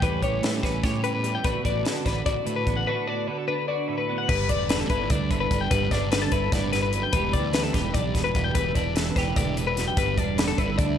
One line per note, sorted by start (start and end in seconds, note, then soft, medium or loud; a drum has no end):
0.00 0.20 E2 medium
0.00 1.04 A2 medium
0.00 0.43 E3 medium
0.00 1.22 G3 medium
0.00 0.63 C#4 medium
0.00 0.21 G4 medium
0.00 0.23 B4 medium
0.00 kick loud
0.00 closed hi-hat medium
0.22 0.40 A1 medium
0.22 0.82 G4 medium
0.22 0.43 C#5 medium
0.22 kick medium
0.22 closed hi-hat medium
0.43 0.60 A2 medium
0.43 1.48 E3 medium
0.43 0.54 B4 medium
0.43 snare loud
0.43 closed hi-hat medium
0.54 0.63 A4 medium
0.63 0.81 A1 medium
0.63 1.43 C#4 medium
0.63 0.84 B4 medium
0.63 kick medium
0.63 snare soft
0.63 closed hi-hat medium
0.83 1.36 A2 medium
0.83 1.42 G4 medium
0.83 1.03 C#5 medium
0.83 kick medium
0.83 snare soft
0.83 closed hi-hat medium
1.03 1.42 E2 medium
1.03 1.13 B4 medium
1.03 closed hi-hat medium
1.15 1.35 B4 medium
1.24 1.44 G3 medium
1.24 closed hi-hat medium
1.35 1.45 G5 medium
1.44 1.53 A1 medium
1.44 1.85 A2 medium
1.44 2.67 B3 medium
1.44 2.05 D4 medium
1.44 1.63 F#4 medium
1.44 1.65 B4 medium
1.44 kick loud
1.44 closed hi-hat medium
1.64 1.82 A1 medium
1.64 2.25 F#4 medium
1.64 1.86 D5 medium
1.64 kick medium
1.64 closed hi-hat medium
1.84 3.26 D3 medium
1.84 1.96 B4 medium
1.84 snare medium
1.84 closed hi-hat medium
1.96 2.06 A4 medium
2.05 2.23 A1 medium
2.05 2.88 D4 medium
2.05 2.26 B4 medium
2.05 kick medium
2.05 snare soft
2.05 closed hi-hat medium
2.26 2.35 A1 medium
2.26 2.84 F#4 medium
2.26 2.46 D5 medium
2.26 kick loud
2.26 closed hi-hat medium
2.46 2.85 A2 medium
2.46 2.64 A2 medium
2.46 2.55 B4 medium
2.46 closed hi-hat medium
2.56 2.76 B4 medium
2.67 2.84 A1 medium
2.67 2.87 B3 soft
2.67 kick medium
2.67 closed hi-hat medium
2.77 2.87 F#5 medium
2.87 3.27 A2 medium
2.87 4.08 B3 medium
2.87 3.47 D4 medium
2.87 3.06 F#4 medium
2.87 3.07 B4 medium
3.07 3.68 F#4 medium
3.07 3.28 D5 medium
3.27 4.70 D3 medium
3.27 3.38 B4 medium
3.38 3.47 A4 medium
3.48 4.27 D4 medium
3.48 3.68 B4 medium
3.68 4.27 F#4 medium
3.68 3.88 D5 medium
3.88 4.29 A2 medium
3.88 3.97 B4 medium
3.98 4.18 B4 medium
4.09 4.27 B3 medium
4.18 4.28 F#5 medium
4.29 4.50 G1 loud
4.29 5.69 G2 medium
4.29 4.49 B4 medium
4.29 kick loud
4.29 crash loud
4.49 4.84 E1 medium
4.49 5.10 D4 medium
4.49 4.70 D5 medium
4.49 kick medium
4.49 closed hi-hat medium
4.69 5.29 D3 medium
4.69 4.80 B4 medium
4.69 snare loud
4.69 closed hi-hat medium
4.80 4.89 A4 medium
4.90 5.07 G1 medium
4.90 5.96 E4 medium
4.90 5.10 B4 medium
4.90 kick medium
4.90 closed hi-hat medium
5.10 5.28 D2 medium
5.10 5.93 D4 medium
5.10 5.31 D5 medium
5.10 kick medium
5.10 closed hi-hat medium
5.31 5.48 G1 medium
5.31 5.69 D3 medium
5.31 5.39 B4 medium
5.31 kick medium
5.31 closed hi-hat medium
5.40 5.61 B4 medium
5.51 5.68 G1 medium
5.51 kick medium
5.51 closed hi-hat medium
5.61 5.71 G5 medium
5.71 5.89 G1 loud
5.71 6.71 G2 medium
5.71 5.91 B4 medium
5.71 kick loud
5.71 closed hi-hat loud
5.91 6.26 G1 medium
5.91 7.15 D4 medium
5.91 6.11 D5 medium
5.91 kick medium
5.91 snare soft
5.91 closed hi-hat medium
6.12 7.13 D3 medium
6.12 6.22 B4 medium
6.12 snare loud
6.12 closed hi-hat medium
6.22 6.32 A4 medium
6.32 6.49 G1 medium
6.32 7.16 E4 medium
6.32 6.52 B4 medium
6.32 kick medium
6.32 closed hi-hat medium
6.52 7.04 G1 loud
6.52 6.73 A2 medium
6.52 6.72 D5 medium
6.52 kick loud
6.52 snare soft
6.52 closed hi-hat medium
6.72 6.93 G2 medium
6.72 6.81 B4 medium
6.72 snare soft
6.72 closed hi-hat medium
6.82 7.03 B4 medium
6.93 7.13 F#2 medium
6.93 closed hi-hat medium
7.03 7.13 G5 medium
7.13 7.35 E1 loud
7.13 8.53 E2 medium
7.13 7.52 E3 medium
7.13 10.64 G3 medium
7.13 7.34 D4 medium
7.13 7.74 G4 medium
7.13 7.33 B4 medium
7.13 kick loud
7.13 closed hi-hat loud
7.33 7.68 D2 loud
7.33 7.95 D4 medium
7.33 7.53 D5 medium
7.33 kick medium
7.33 closed hi-hat medium
7.52 8.80 E3 medium
7.52 7.64 B4 medium
7.52 snare loud
7.52 closed hi-hat medium
7.64 7.73 A4 medium
7.73 7.92 E1 loud
7.73 9.18 G4 medium
7.73 7.94 B4 medium
7.73 kick medium
7.73 snare soft
7.73 closed hi-hat medium
7.94 8.12 B1 medium
7.94 8.58 D4 medium
7.94 8.14 D5 medium
7.94 kick loud
7.94 closed hi-hat medium
8.14 8.32 E1 medium
8.14 8.53 B2 medium
8.14 8.23 B4 medium
8.14 kick medium
8.14 snare soft
8.14 closed hi-hat medium
8.24 8.45 B4 medium
8.35 8.52 E1 medium
8.35 kick medium
8.35 closed hi-hat medium
8.44 8.55 G5 medium
8.55 8.73 E1 loud
8.55 9.36 E2 medium
8.55 8.75 B4 medium
8.55 kick loud
8.55 closed hi-hat loud
8.75 9.10 E1 medium
8.75 10.18 D4 medium
8.75 8.95 D5 medium
8.75 kick medium
8.75 closed hi-hat medium
8.95 10.22 E3 medium
8.95 9.06 B4 medium
8.95 snare loud
8.95 closed hi-hat medium
9.06 9.16 A4 medium
9.16 9.34 E1 medium
9.16 10.58 G4 medium
9.16 9.37 B4 medium
9.16 kick medium
9.16 snare soft
9.16 closed hi-hat medium
9.36 9.89 E1 loud
9.36 9.57 D2 medium
9.36 9.57 D5 medium
9.36 kick medium
9.36 closed hi-hat medium
9.57 9.77 E2 medium
9.57 9.66 B4 medium
9.57 closed hi-hat medium
9.67 9.87 B4 medium
9.77 9.96 F#2 medium
9.77 snare soft
9.77 closed hi-hat medium
9.88 9.97 G5 medium
9.97 10.18 G1 loud
9.97 10.98 G2 medium
9.97 10.18 B4 medium
9.97 kick loud
9.97 closed hi-hat medium
10.18 10.53 E1 medium
10.18 10.77 D4 medium
10.18 10.38 D5 medium
10.18 kick medium
10.18 closed hi-hat medium
10.38 10.98 D3 medium
10.38 10.47 B4 medium
10.38 snare loud
10.38 closed hi-hat loud
10.48 10.58 A4 medium
10.58 10.76 G1 medium
10.58 10.98 E4 medium
10.58 10.78 B4 medium
10.58 kick medium
10.58 closed hi-hat medium
10.78 10.96 D2 medium
10.78 10.98 D4 medium
10.78 10.98 D5 medium
10.78 kick loud
10.78 closed hi-hat medium